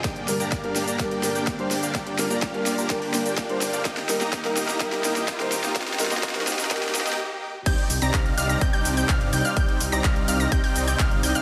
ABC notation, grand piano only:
X:1
M:4/4
L:1/16
Q:1/4=126
K:Cm
V:1 name="Grand piano"
z2 [G,B,DB] z2 [G,B,DB] z2 [G,B,DB]2 [G,B,DB] z2 [G,B,Dc] z2 | z2 [G,B,DB] z2 [G,B,DB] z2 [G,B,DB]2 [G,B,DB] z2 [G,B,Dc] z2 | z2 [G,B,EB] z2 [G,B,EB] z2 [G,B,EB]2 [G,B,EB] z2 [G,B,Ec] z2 | z2 [G,B,EB] z2 [G,B,EB] z2 [G,B,EB]2 z6 |
z16 | z16 |]